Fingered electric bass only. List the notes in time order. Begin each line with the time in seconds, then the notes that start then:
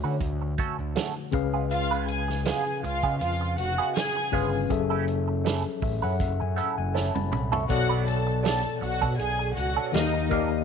0.04 D3
0.20 D2
0.79 D2
1.34 C#2
2.84 C#2
3.04 C#3
3.21 F2
3.59 F1
4.33 G1
4.70 F#1
5.82 A1
6.04 F#2
6.20 F#1
6.41 F#2
6.78 F#1
7.16 F#1
7.33 C2
7.70 B1
8.82 B1
9.02 B2
9.19 B1
9.57 C#2
9.94 D#2
10.32 D#2